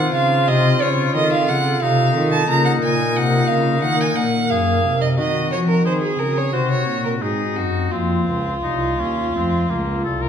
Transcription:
0.00 0.11 D#3 soft
0.00 0.11 D#3 medium
0.00 1.08 C4 soft
0.00 1.09 D#4 soft
0.00 1.84 F4 medium
0.00 1.10 C5 soft
0.00 0.11 F#5 medium
0.14 0.50 C#3 medium
0.14 0.45 C#3 medium
0.14 0.49 F5 medium
0.48 0.78 C3 soft
0.48 0.80 C3 medium
0.48 0.83 D#5 medium
0.81 1.16 C#3 medium
0.81 1.11 C#3 medium
0.81 1.14 C#5 medium
1.11 1.50 D#3 medium
1.11 2.42 C4 soft
1.11 2.43 F4 soft
1.11 2.44 A4 soft
1.15 1.45 D#3 soft
1.15 1.31 D#5 medium
1.32 1.50 F5 medium
1.48 1.81 C#3 medium
1.48 1.79 C#3 medium
1.48 1.81 F#5 medium
1.82 2.14 C3 medium
1.82 2.12 C3 soft
1.82 4.34 D#4 medium
1.82 2.31 F5 medium
2.15 2.45 D#3 soft
2.15 2.48 D#3 medium
2.32 2.48 A5 medium
2.45 3.76 A#3 soft
2.45 3.77 F4 soft
2.45 3.78 A#4 soft
2.49 2.81 C#3 medium
2.49 2.79 C#3 soft
2.49 2.64 A#5 medium
2.65 2.72 F#5 medium
2.82 3.15 A#2 medium
2.82 3.13 A#2 soft
2.82 3.17 G#5 medium
3.16 3.49 C3 medium
3.16 3.47 C3 soft
3.16 3.49 F#5 medium
3.47 3.85 C#3 medium
3.47 3.80 C#3 soft
3.47 3.82 F5 medium
3.78 4.79 A#3 soft
3.78 5.13 D#4 soft
3.78 5.13 A#4 soft
3.83 4.13 D#3 soft
3.83 4.17 D#3 medium
3.83 4.02 F#5 medium
4.01 4.17 G#5 medium
4.15 4.47 A#2 soft
4.15 4.50 A#2 medium
4.15 4.51 F#5 medium
4.50 4.81 F#2 soft
4.50 4.85 F#2 medium
4.50 4.94 G#4 medium
4.50 5.01 F5 medium
4.85 5.15 C3 soft
4.85 5.21 C3 medium
5.01 5.08 D#5 medium
5.14 7.86 C4 soft
5.14 7.87 D#4 soft
5.14 7.88 F#4 soft
5.14 5.81 F#4 medium
5.18 5.49 D#3 soft
5.18 5.52 D#3 medium
5.18 5.51 D#5 medium
5.52 5.85 F3 medium
5.52 5.83 F3 soft
5.52 5.59 C#5 medium
5.68 5.85 A#4 medium
5.85 6.19 D#3 medium
5.85 6.16 D#3 soft
5.85 6.52 G#4 medium
5.85 5.93 C5 medium
6.01 6.20 G#4 medium
6.19 6.55 C#3 soft
6.19 6.51 C#3 soft
6.19 6.39 A#4 medium
6.37 6.55 C#5 medium
6.53 6.87 C3 soft
6.53 6.85 C3 soft
6.53 7.24 F#4 medium
6.53 6.70 C5 medium
6.70 7.04 C#5 medium
6.88 7.21 A#2 medium
6.88 7.20 A#2 soft
7.05 7.12 A#4 medium
7.21 7.53 G#2 soft
7.21 7.59 G#2 soft
7.21 7.92 D#4 medium
7.21 7.57 G#4 medium
7.56 7.93 F#2 soft
7.56 7.89 F#2 soft
7.56 7.93 F#4 medium
7.88 8.24 F2 soft
7.88 8.25 A#3 soft
7.88 8.25 C4 soft
7.88 9.30 F4 soft
7.88 10.29 F4 medium
7.92 8.28 F2 medium
7.92 8.55 C4 soft
8.28 8.60 C#2 soft
8.28 8.63 C#2 soft
8.63 8.96 C2 soft
8.63 8.99 C2 soft
8.63 9.01 D#4 medium
8.99 9.31 D#2 soft
8.99 9.34 D#2 soft
8.99 9.35 C#4 soft
9.30 9.66 F2 soft
9.30 9.67 A3 soft
9.30 9.67 C4 soft
9.30 10.29 F4 soft
9.36 9.70 F2 soft
9.36 9.71 C4 medium
9.69 10.02 C#2 soft
9.69 10.08 C#2 soft
9.69 10.04 A#3 soft
10.04 10.29 C2 soft
10.04 10.24 A4 medium
10.22 10.29 A#4 medium

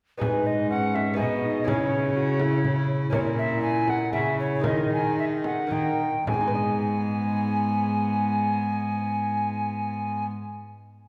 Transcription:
0.17 1.12 B3 soft
0.17 1.14 D#4 soft
0.17 1.15 G#4 soft
0.17 0.48 B4 medium
0.17 frame drum medium
0.22 1.15 G#2 soft
0.22 1.21 G#2 medium
0.22 0.72 D#4 medium
0.47 0.70 D#5 medium
0.70 1.21 C#4 medium
0.70 0.96 F#5 medium
0.95 1.17 E5 medium
0.95 frame drum soft
1.14 1.64 B3 soft
1.14 1.64 D#4 soft
1.14 1.65 G#4 soft
1.18 1.63 B2 soft
1.18 1.70 B2 medium
1.18 1.46 B3 medium
1.18 1.66 D#5 medium
1.18 frame drum soft
1.44 1.70 D#4 medium
1.64 3.10 C#3 medium
1.64 3.08 C#4 soft
1.64 3.08 E4 soft
1.64 3.09 G#4 soft
1.64 2.87 C#5 medium
1.64 frame drum medium
1.68 3.13 C#3 medium
1.68 2.18 E4 medium
2.17 2.42 F#4 medium
2.40 2.65 E4 medium
2.40 frame drum soft
2.64 3.13 E4 medium
2.64 frame drum soft
3.10 4.09 A#2 medium
3.10 4.14 A#2 medium
3.10 4.58 C#4 soft
3.10 4.59 E4 soft
3.10 4.09 E4 medium
3.10 4.59 A#4 medium
3.10 3.20 C#5 medium
3.10 frame drum medium
3.39 3.61 E5 medium
3.62 3.91 G#5 loud
3.88 4.13 F#5 medium
3.88 frame drum soft
4.13 4.64 C#3 medium
4.13 4.60 C#3 medium
4.13 4.67 E4 medium
4.13 4.38 E5 medium
4.13 frame drum soft
4.40 4.64 C#5 medium
4.60 5.67 D#3 medium
4.60 5.66 G#3 soft
4.60 5.66 D#4 soft
4.60 5.67 A#4 soft
4.60 frame drum medium
4.65 5.69 D#3 medium
4.65 5.71 D#4 medium
4.65 4.90 D#5 medium
4.93 5.17 G#5 medium
5.19 5.25 E5 medium
5.44 5.74 F#5 medium
5.44 frame drum soft
5.67 6.00 D#3 soft
5.67 6.23 A#3 soft
5.67 6.24 D#4 soft
5.67 6.25 A#4 soft
5.71 6.04 D#3 soft
5.71 6.03 D#4 medium
5.71 6.27 G5 medium
5.71 frame drum soft
6.27 10.25 G#2 soft
6.27 10.25 G#2 medium
6.27 10.25 B3 medium
6.27 10.26 G#5 medium
6.27 frame drum medium
6.34 10.31 G#3 soft
6.41 10.38 D#4 soft
6.48 6.55 B4 soft
6.55 10.53 D#5 soft

